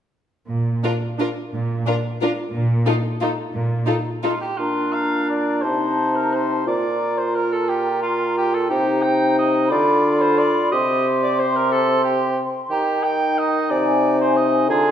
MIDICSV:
0, 0, Header, 1, 9, 480
1, 0, Start_track
1, 0, Key_signature, -2, "major"
1, 0, Tempo, 335570
1, 707, Time_signature, 3, 2, 24, 8
1, 5528, Tempo, 352734
1, 8888, Tempo, 338983
1, 13208, Tempo, 331858
1, 21203, End_track
2, 0, Start_track
2, 0, Title_t, "Flute section"
2, 0, Program_c, 0, 73
2, 6517, Note_on_c, 0, 82, 36
2, 7883, Note_off_c, 0, 82, 0
2, 7929, Note_on_c, 0, 81, 39
2, 9354, Note_off_c, 0, 81, 0
2, 9354, Note_on_c, 0, 82, 40
2, 11875, Note_off_c, 0, 82, 0
2, 12242, Note_on_c, 0, 82, 45
2, 13652, Note_off_c, 0, 82, 0
2, 13679, Note_on_c, 0, 83, 50
2, 15137, Note_on_c, 0, 84, 45
2, 15140, Note_off_c, 0, 83, 0
2, 18012, Note_off_c, 0, 84, 0
2, 18019, Note_on_c, 0, 82, 43
2, 19445, Note_off_c, 0, 82, 0
2, 19449, Note_on_c, 0, 80, 50
2, 20865, Note_off_c, 0, 80, 0
2, 20893, Note_on_c, 0, 82, 45
2, 21203, Note_off_c, 0, 82, 0
2, 21203, End_track
3, 0, Start_track
3, 0, Title_t, "Cor anglais"
3, 0, Program_c, 1, 69
3, 6031, Note_on_c, 1, 65, 42
3, 6261, Note_off_c, 1, 65, 0
3, 6271, Note_on_c, 1, 67, 43
3, 6496, Note_on_c, 1, 65, 49
3, 6516, Note_off_c, 1, 67, 0
3, 6981, Note_on_c, 1, 77, 50
3, 7001, Note_off_c, 1, 65, 0
3, 7466, Note_off_c, 1, 77, 0
3, 7474, Note_on_c, 1, 74, 50
3, 7911, Note_on_c, 1, 72, 59
3, 7932, Note_off_c, 1, 74, 0
3, 8652, Note_on_c, 1, 70, 53
3, 8673, Note_off_c, 1, 72, 0
3, 8892, Note_on_c, 1, 72, 57
3, 8913, Note_off_c, 1, 70, 0
3, 9359, Note_off_c, 1, 72, 0
3, 9367, Note_on_c, 1, 74, 59
3, 10078, Note_on_c, 1, 72, 50
3, 10100, Note_off_c, 1, 74, 0
3, 10335, Note_on_c, 1, 70, 57
3, 10356, Note_off_c, 1, 72, 0
3, 10570, Note_on_c, 1, 69, 51
3, 10591, Note_off_c, 1, 70, 0
3, 10800, Note_on_c, 1, 67, 59
3, 10822, Note_off_c, 1, 69, 0
3, 11272, Note_off_c, 1, 67, 0
3, 11281, Note_on_c, 1, 65, 52
3, 11763, Note_off_c, 1, 65, 0
3, 11778, Note_on_c, 1, 67, 61
3, 12010, Note_on_c, 1, 69, 49
3, 12031, Note_off_c, 1, 67, 0
3, 12222, Note_off_c, 1, 69, 0
3, 12231, Note_on_c, 1, 67, 62
3, 12700, Note_on_c, 1, 79, 57
3, 12721, Note_off_c, 1, 67, 0
3, 13198, Note_off_c, 1, 79, 0
3, 13207, Note_on_c, 1, 75, 65
3, 13673, Note_on_c, 1, 74, 72
3, 13695, Note_off_c, 1, 75, 0
3, 14401, Note_on_c, 1, 72, 63
3, 14423, Note_off_c, 1, 74, 0
3, 14648, Note_on_c, 1, 74, 72
3, 14670, Note_off_c, 1, 72, 0
3, 15123, Note_off_c, 1, 74, 0
3, 15132, Note_on_c, 1, 75, 74
3, 15648, Note_off_c, 1, 75, 0
3, 15865, Note_on_c, 1, 74, 65
3, 16108, Note_on_c, 1, 72, 64
3, 16130, Note_off_c, 1, 74, 0
3, 16356, Note_on_c, 1, 70, 62
3, 16378, Note_off_c, 1, 72, 0
3, 16583, Note_on_c, 1, 69, 69
3, 16605, Note_off_c, 1, 70, 0
3, 17035, Note_off_c, 1, 69, 0
3, 17044, Note_on_c, 1, 67, 60
3, 17532, Note_off_c, 1, 67, 0
3, 18004, Note_on_c, 1, 67, 70
3, 18491, Note_on_c, 1, 79, 67
3, 18512, Note_off_c, 1, 67, 0
3, 18993, Note_on_c, 1, 75, 71
3, 19015, Note_off_c, 1, 79, 0
3, 19447, Note_on_c, 1, 74, 73
3, 19469, Note_off_c, 1, 75, 0
3, 20166, Note_off_c, 1, 74, 0
3, 20185, Note_on_c, 1, 72, 62
3, 20416, Note_on_c, 1, 75, 67
3, 20438, Note_off_c, 1, 72, 0
3, 20885, Note_off_c, 1, 75, 0
3, 20894, Note_on_c, 1, 68, 70
3, 21203, Note_off_c, 1, 68, 0
3, 21203, End_track
4, 0, Start_track
4, 0, Title_t, "Violin section"
4, 0, Program_c, 2, 48
4, 1199, Note_on_c, 2, 70, 30
4, 1314, Note_off_c, 2, 70, 0
4, 1706, Note_on_c, 2, 70, 30
4, 1821, Note_off_c, 2, 70, 0
4, 2676, Note_on_c, 2, 70, 37
4, 2790, Note_off_c, 2, 70, 0
4, 3171, Note_on_c, 2, 70, 33
4, 3286, Note_off_c, 2, 70, 0
4, 4094, Note_on_c, 2, 69, 41
4, 4208, Note_off_c, 2, 69, 0
4, 4601, Note_on_c, 2, 69, 31
4, 4716, Note_off_c, 2, 69, 0
4, 5535, Note_on_c, 2, 69, 35
4, 5644, Note_off_c, 2, 69, 0
4, 6027, Note_on_c, 2, 69, 31
4, 6135, Note_off_c, 2, 69, 0
4, 21203, End_track
5, 0, Start_track
5, 0, Title_t, "Violin section"
5, 0, Program_c, 3, 48
5, 1213, Note_on_c, 3, 65, 31
5, 1327, Note_off_c, 3, 65, 0
5, 1715, Note_on_c, 3, 65, 28
5, 1830, Note_off_c, 3, 65, 0
5, 2671, Note_on_c, 3, 65, 34
5, 2786, Note_off_c, 3, 65, 0
5, 3177, Note_on_c, 3, 65, 36
5, 3292, Note_off_c, 3, 65, 0
5, 4096, Note_on_c, 3, 65, 38
5, 4210, Note_off_c, 3, 65, 0
5, 4590, Note_on_c, 3, 65, 31
5, 4705, Note_off_c, 3, 65, 0
5, 5530, Note_on_c, 3, 65, 32
5, 5639, Note_off_c, 3, 65, 0
5, 6024, Note_on_c, 3, 65, 30
5, 6133, Note_off_c, 3, 65, 0
5, 21203, End_track
6, 0, Start_track
6, 0, Title_t, "Clarinet"
6, 0, Program_c, 4, 71
6, 6514, Note_on_c, 4, 62, 36
6, 7938, Note_on_c, 4, 63, 38
6, 7958, Note_off_c, 4, 62, 0
6, 9340, Note_off_c, 4, 63, 0
6, 9348, Note_on_c, 4, 65, 38
6, 12231, Note_on_c, 4, 63, 41
6, 12252, Note_off_c, 4, 65, 0
6, 13676, Note_off_c, 4, 63, 0
6, 13682, Note_on_c, 4, 65, 49
6, 15136, Note_on_c, 4, 67, 49
6, 15158, Note_off_c, 4, 65, 0
6, 17635, Note_off_c, 4, 67, 0
6, 18012, Note_on_c, 4, 63, 45
6, 20832, Note_off_c, 4, 63, 0
6, 20893, Note_on_c, 4, 65, 45
6, 21203, Note_off_c, 4, 65, 0
6, 21203, End_track
7, 0, Start_track
7, 0, Title_t, "Viola section"
7, 0, Program_c, 5, 48
7, 1206, Note_on_c, 5, 62, 31
7, 1320, Note_off_c, 5, 62, 0
7, 1689, Note_on_c, 5, 62, 34
7, 1804, Note_off_c, 5, 62, 0
7, 2663, Note_on_c, 5, 62, 36
7, 2777, Note_off_c, 5, 62, 0
7, 3165, Note_on_c, 5, 62, 35
7, 3279, Note_off_c, 5, 62, 0
7, 4099, Note_on_c, 5, 63, 35
7, 4213, Note_off_c, 5, 63, 0
7, 4588, Note_on_c, 5, 63, 40
7, 4702, Note_off_c, 5, 63, 0
7, 5520, Note_on_c, 5, 63, 35
7, 5630, Note_off_c, 5, 63, 0
7, 6037, Note_on_c, 5, 63, 35
7, 6146, Note_off_c, 5, 63, 0
7, 21203, End_track
8, 0, Start_track
8, 0, Title_t, "Bassoon"
8, 0, Program_c, 6, 70
8, 6520, Note_on_c, 6, 46, 45
8, 7938, Note_on_c, 6, 48, 42
8, 7959, Note_off_c, 6, 46, 0
8, 9351, Note_off_c, 6, 48, 0
8, 9360, Note_on_c, 6, 46, 49
8, 12241, Note_on_c, 6, 48, 53
8, 12263, Note_off_c, 6, 46, 0
8, 13682, Note_on_c, 6, 50, 56
8, 13703, Note_off_c, 6, 48, 0
8, 14905, Note_off_c, 6, 50, 0
8, 15151, Note_on_c, 6, 48, 55
8, 17592, Note_off_c, 6, 48, 0
8, 18004, Note_on_c, 6, 51, 54
8, 19463, Note_on_c, 6, 48, 57
8, 19485, Note_off_c, 6, 51, 0
8, 20886, Note_on_c, 6, 50, 56
8, 20908, Note_off_c, 6, 48, 0
8, 21203, Note_off_c, 6, 50, 0
8, 21203, End_track
9, 0, Start_track
9, 0, Title_t, "Cello section"
9, 0, Program_c, 7, 48
9, 705, Note_on_c, 7, 46, 37
9, 1114, Note_off_c, 7, 46, 0
9, 2186, Note_on_c, 7, 46, 48
9, 2580, Note_off_c, 7, 46, 0
9, 3629, Note_on_c, 7, 46, 48
9, 4012, Note_off_c, 7, 46, 0
9, 5057, Note_on_c, 7, 46, 52
9, 5448, Note_off_c, 7, 46, 0
9, 21203, End_track
0, 0, End_of_file